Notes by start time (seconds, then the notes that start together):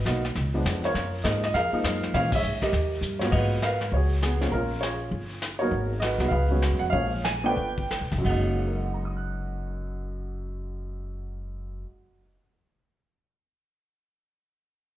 Already playing: F#4 B4
0.06 B1 F#3 A#3 B3 D#4, kick, snare, hi-hat pedal
0.25 snare
0.35 C#2, brush sweep, kick, snare
0.54 F3 G#3 B3 D4
0.65 F2, kick, snare, hi-hat pedal
0.84 F4 A#4 C#5, snare
0.94 F#2, brush sweep, kick, snare
1.24 G#2 F3 G#3 A#3 D#4 D#5, kick, snare, hi-hat pedal
1.44 D#5, snare
1.54 F2 G#4 A#4 F5, brush sweep, kick, snare
1.72 F3 G#3 A#3 D#4, muted upright bass stroke
1.84 F#2, kick, snare, hi-hat pedal
2.03 snare
2.14 A#2 E3 G#3 A#3 C#4 G#4 C#5 F5, brush sweep, kick, snare
2.32 G#4 C#5 E5, kick, ride
2.43 G#2, hi-hat pedal
2.62 G4 A#4 D#5, kick, snare
2.72 D#2, brush sweep, kick, snare
3.01 G2, hi-hat pedal
3.19 G#2 F#3 A#3 B3 F4 C#5, snare
3.32 G#2 F#4 B4 D#5, brush sweep, kick, crash
3.62 A#4 B4 F5, snare, hi-hat pedal
3.81 snare
3.92 C#2 C#5, brush sweep, kick
3.96 F#4 G#4
4.22 B3 G#4, snare, hi-hat pedal
4.41 F3 G#3 A#3 C#4, snare
4.52 A#1 C#4 F4 A#4, brush sweep, kick
4.81 F4 G#4 C#5, snare, hi-hat pedal
5.11 G1, brush sweep, kick
5.42 snare, hi-hat pedal
5.59 F#3 A#3 B3 D#4 F#4 A#4 C#5
5.71 G#1, brush sweep, kick
6.00 F#4 B4 D#5, snare, hi-hat pedal
6.18 C2 F#3 G#3 B3 D#4, snare
6.28 C#2 G#4 B4 F5, brush sweep, kick
6.51 F#3 G#3 B3 C#4
6.62 snare, hi-hat pedal
6.71 F#2
6.79 F2 F#5
6.90 A#1 F3 G#3 G#4 C#5 F5, brush sweep, kick
6.94 A#3 C#4
7.25 G#5, snare, hi-hat pedal
7.44 F3 A3 B3 D4 G5
7.48 B4 D5
7.57 G1, brush sweep, kick
7.78 kick
7.91 snare, hi-hat pedal
8.01 B1
8.12 F1, kick, snare
8.18 F#2 F#3
8.24 F#1 G#3 A#3 F#5, kick, crash
8.30 D#4
8.59 F#4
8.67 A#4
8.76 D#5
8.84 F#5
8.94 A#5
9.05 D#6
9.17 F#6